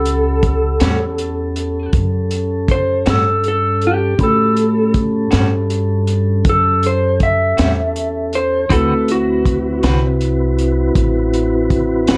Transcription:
0.00 0.77 C#2 medium
0.00 4.14 C#4 soft
0.00 4.15 C#4 medium
0.00 4.15 G4 soft
0.00 1.91 A4 medium
0.00 4.15 A4 medium
0.00 4.15 F#5 soft
0.00 4.16 B5 soft
0.05 closed hi-hat medium
0.43 kick medium
0.43 closed hi-hat soft
0.80 1.90 E2 medium
0.80 1.04 A2 soft
0.80 1.04 G3 medium
0.80 1.04 C#4 medium
0.80 1.03 F#4 medium
0.80 snare medium
0.80 closed hi-hat medium
1.18 closed hi-hat soft
1.56 closed hi-hat soft
1.93 3.02 F#2 medium
1.93 kick medium
1.93 closed hi-hat medium
2.31 closed hi-hat soft
2.68 3.06 C5 medium
2.68 kick medium
2.68 closed hi-hat soft
3.06 4.16 G2 medium
3.06 3.29 A2 soft
3.06 3.29 G3 soft
3.06 3.29 C#4 soft
3.06 3.28 F#4 soft
3.06 3.44 A4 medium
3.06 snare medium
3.06 closed hi-hat medium
3.44 closed hi-hat soft
3.48 3.82 A4 medium
3.82 closed hi-hat soft
3.87 4.21 G4 medium
4.18 5.28 A2 medium
4.18 8.66 C#4 medium
4.18 8.66 C#4 soft
4.18 8.66 F#4 soft
4.18 8.66 G4 soft
4.18 8.66 A4 medium
4.18 8.67 B5 soft
4.18 kick medium
4.18 closed hi-hat medium
4.23 4.94 A4 medium
4.57 closed hi-hat soft
4.94 kick medium
4.94 closed hi-hat soft
5.31 6.42 G2 medium
5.31 5.55 A2 soft
5.31 5.55 G3 medium
5.31 5.54 C#4 medium
5.31 5.54 F#4 medium
5.31 snare medium
5.31 closed hi-hat medium
5.70 closed hi-hat medium
6.07 closed hi-hat soft
6.45 7.54 F#2 medium
6.45 kick medium
6.45 closed hi-hat medium
6.49 6.83 A4 medium
6.83 7.21 C5 medium
6.83 closed hi-hat medium
7.20 8.31 E5 medium
7.20 kick medium
7.20 closed hi-hat soft
7.57 8.67 E2 medium
7.57 7.81 A2 soft
7.57 7.81 G3 soft
7.57 7.80 C#4 soft
7.57 7.80 F#4 soft
7.57 snare medium
7.57 closed hi-hat medium
7.96 closed hi-hat soft
8.33 8.70 C5 medium
8.33 closed hi-hat soft
8.70 9.80 D2 medium
8.70 8.92 D3 medium
8.70 12.17 C4 soft
8.70 8.93 C4 medium
8.70 12.17 C4 medium
8.70 12.17 E4 soft
8.70 12.17 E4 medium
8.70 12.17 F#4 medium
8.70 12.17 F#4 soft
8.70 8.93 F#4 medium
8.70 9.08 A4 medium
8.70 12.17 B4 medium
8.70 8.93 B4 medium
8.70 12.17 B4 soft
8.70 kick medium
8.70 closed hi-hat medium
9.08 9.83 F#4 medium
9.08 closed hi-hat medium
9.46 kick medium
9.46 closed hi-hat soft
9.83 10.92 C2 medium
9.83 10.07 D3 soft
9.83 10.07 C4 soft
9.83 10.06 F#4 medium
9.83 10.06 B4 medium
9.83 snare medium
9.83 closed hi-hat medium
10.21 closed hi-hat soft
10.59 closed hi-hat soft
10.95 12.05 A1 medium
10.95 kick medium
10.95 closed hi-hat medium
11.34 closed hi-hat soft
11.70 kick medium
11.70 closed hi-hat soft
12.07 12.17 G1 medium
12.07 12.17 D3 soft
12.07 12.17 C4 soft
12.07 12.17 F#4 medium
12.07 12.17 B4 medium
12.07 snare loud
12.07 closed hi-hat medium

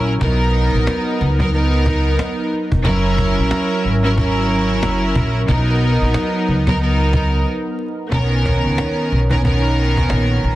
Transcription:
0.00 0.18 A#1 loud
0.00 0.11 F#3 loud
0.00 0.19 F#3 medium
0.00 0.12 C#4 medium
0.00 0.19 C#4 medium
0.00 0.12 E4 medium
0.00 0.19 E4 medium
0.00 0.13 A#4 loud
0.00 0.19 A#4 loud
0.19 0.70 B1 loud
0.19 1.28 F#3 loud
0.19 1.28 B3 medium
0.19 2.83 B3 medium
0.19 1.29 D#4 medium
0.19 2.83 D#4 medium
0.19 2.83 A#4 medium
0.19 1.29 A#4 loud
0.19 cajon bass loud
0.54 cajon slap soft
0.74 0.86 A#1 loud
0.87 cajon slap loud
1.21 2.15 C#2 loud
1.21 cajon slap soft
1.39 1.50 F#3 loud
1.39 1.51 B3 medium
1.39 1.52 D#4 medium
1.39 1.53 A#4 loud
1.39 cajon bass medium
1.51 2.45 F#3 medium
1.51 2.45 B3 medium
1.51 2.46 D#4 medium
1.51 2.46 A#4 loud
1.51 cajon slap medium
1.86 cajon bass loud
2.19 cajon slap loud
2.53 cajon slap soft
2.72 2.85 E1 medium
2.72 cajon bass medium
2.84 3.33 F#1 loud
2.84 3.92 F#3 loud
2.84 5.46 F#3 medium
2.84 5.46 C#4 medium
2.84 3.92 C#4 loud
2.84 5.46 E4 medium
2.84 3.93 E4 loud
2.84 5.46 A#4 medium
2.84 3.93 A#4 loud
2.84 cajon bass loud
3.18 cajon bass medium
3.38 3.50 A#1 medium
3.51 cajon slap loud
3.85 4.83 G#1 medium
3.85 cajon slap soft
4.02 4.14 F#3 loud
4.02 4.15 C#4 medium
4.02 4.16 E4 medium
4.02 4.17 A#4 loud
4.15 5.39 F#3 loud
4.15 5.40 C#4 medium
4.15 5.40 E4 medium
4.15 5.41 A#4 loud
4.15 cajon bass loud
4.50 cajon slap soft
4.69 cajon slap soft
4.83 5.13 F#1 loud
4.83 cajon slap loud
5.15 5.46 A#1 loud
5.15 cajon bass medium
5.47 5.97 B1 loud
5.47 6.55 F#3 loud
5.47 6.56 B3 medium
5.47 8.10 B3 medium
5.47 6.56 D#4 loud
5.47 8.10 D#4 loud
5.47 8.10 A#4 medium
5.47 6.57 A#4 loud
5.47 cajon bass loud
5.82 cajon slap soft
6.02 6.14 A#1 loud
6.14 cajon slap loud
6.48 7.43 C#2 medium
6.48 cajon slap soft
6.66 6.78 F#3 medium
6.66 6.78 B3 medium
6.66 6.79 D#4 medium
6.66 6.80 A#4 loud
6.66 cajon bass medium
6.79 7.46 F#3 medium
6.79 7.46 B3 medium
6.79 7.46 D#4 medium
6.79 7.47 A#4 loud
6.79 cajon slap medium
7.00 cajon slap soft
7.13 cajon bass loud
8.10 8.61 B1 loud
8.10 9.19 D#3 medium
8.10 9.19 B3 medium
8.10 9.20 C#4 medium
8.10 9.20 A#4 loud
8.10 cajon bass loud
8.46 cajon bass medium
8.65 8.77 C#2 medium
8.78 cajon slap loud
9.12 10.06 B1 medium
9.29 9.41 D#3 medium
9.29 9.42 B3 medium
9.29 9.43 C#4 medium
9.29 9.44 A#4 loud
9.29 cajon bass medium
9.42 10.55 D#3 loud
9.42 10.55 B3 loud
9.42 10.55 C#4 medium
9.42 10.55 A#4 loud
9.42 cajon bass loud
9.96 cajon bass medium
9.96 cajon slap soft
10.10 10.41 A#1 medium
10.10 cajon slap loud
10.44 10.55 A#1 loud

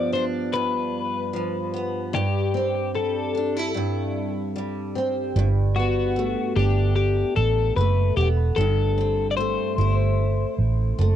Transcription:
0.00 0.52 G2 medium
0.00 1.32 F3 medium
0.00 1.72 B3 medium
0.00 0.10 D5 medium
0.13 2.23 D4 medium
0.13 0.24 C5 medium
0.53 2.12 G2 medium
0.53 2.14 B4 medium
1.33 2.23 F3 medium
1.74 2.23 B3 soft
2.13 3.73 G2 medium
2.13 2.91 G4 medium
2.54 4.94 C4 medium
2.94 4.55 G3 medium
2.94 3.71 A4 medium
3.35 3.56 D4 soft
3.56 5.44 E4 soft
3.74 5.35 G2 medium
4.56 6.16 G3 medium
4.95 5.44 C4 soft
5.36 6.34 G1 medium
5.36 6.97 G2 medium
5.76 8.18 B3 medium
5.76 6.52 F#4 medium
6.16 7.78 A3 medium
6.56 7.22 G1 medium
6.56 8.66 D4 soft
6.56 6.95 G4 medium
6.96 7.36 G4 medium
7.36 7.70 A1 medium
7.36 7.74 A4 medium
7.77 8.10 F#1 medium
7.77 9.37 A3 medium
7.77 8.16 B4 medium
8.17 8.50 E1 medium
8.17 8.97 B3 medium
8.17 8.28 G4 medium
8.56 9.56 G1 medium
8.56 10.18 G2 medium
8.56 9.27 A4 medium
8.98 11.16 C4 medium
9.31 9.36 D5 medium
9.37 10.97 A3 medium
9.37 10.54 C5 medium
9.78 10.44 G1 medium
9.78 11.16 E4 medium
10.59 10.91 A1 medium
10.99 11.16 F#1 medium
10.99 11.16 A3 medium

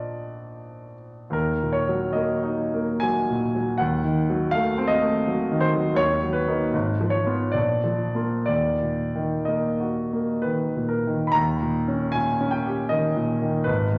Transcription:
0.00 1.28 A#1 soft
0.00 1.29 F3 soft
0.00 1.29 A#3 soft
0.00 1.30 F4 soft
0.00 0.93 D5 soft
0.00 1.37 D#5 medium
1.30 3.74 D#2 soft
1.30 1.74 A#4 medium
1.62 2.04 A#2 soft
1.73 2.14 C#5 medium
1.88 2.32 F#3 soft
2.13 2.62 A#3 soft
2.13 3.02 D#5 soft
2.43 2.92 D#4 soft
2.74 3.19 A#3 soft
3.00 3.45 F#3 soft
3.00 3.79 G#5 medium
3.30 3.71 A#2 soft
3.55 3.80 F#3 soft
3.78 5.93 D#2 medium
3.78 4.52 F#5 medium
4.05 4.44 D#3 soft
4.30 4.68 F#3 soft
4.51 4.93 A3 soft
4.51 4.89 F5 medium
4.78 5.17 C4 soft
4.87 5.61 D#5 medium
5.02 5.41 A3 soft
5.27 5.65 F#3 soft
5.52 5.89 D#3 soft
5.61 5.97 C5 medium
5.76 5.99 F#3 soft
5.95 6.69 D#2 medium
5.95 6.34 C#5 medium
6.23 6.63 F#3 soft
6.33 7.12 B4 medium
6.47 6.71 A#3 soft
6.47 6.71 D#4 soft
6.73 7.52 G#1 medium
7.01 7.44 F3 soft
7.10 7.53 C#5 medium
7.26 7.52 B3 soft
7.26 7.52 F4 soft
7.52 8.45 A#1 soft
7.52 8.44 D5 medium
7.84 8.35 F3 soft
8.15 8.45 A#3 soft
8.15 8.45 F4 soft
8.46 11.31 D#2 soft
8.46 9.47 D5 medium
8.82 9.35 A#2 soft
9.15 9.68 D#3 soft
9.45 10.00 A#3 soft
9.45 10.90 D#5 soft
9.80 10.32 F#4 soft
10.13 10.63 A#3 soft
10.42 10.95 D#3 soft
10.42 10.90 B4 medium
10.76 11.25 A#2 soft
10.89 11.27 A#4 soft
11.07 11.35 D#3 soft
11.27 11.35 B5 soft
11.32 13.63 D#2 medium
11.32 12.13 A#5 medium
11.62 12.04 A#2 soft
11.88 12.30 C#4 soft
12.12 12.56 A#2 soft
12.12 12.52 G#5 medium
12.41 12.82 C#4 soft
12.51 12.91 G5 medium
12.66 13.07 G4 soft
12.89 13.32 D#3 soft
12.89 13.66 D#5 medium
13.16 13.57 A#2 soft
13.42 13.67 D#3 soft
13.64 13.98 G#1 medium
13.64 13.98 B4 medium
13.92 13.98 D#2 soft

